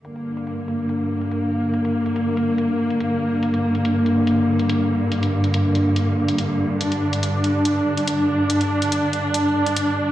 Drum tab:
HH |xx-xx-x-x--xx---|xx-xx-x-x--xx---|xx-xx-x-x--xx---|xx-xx-x-x--xx---|

HH |xx-xx-x-x--xx---|xx-xx-x-x--xx---|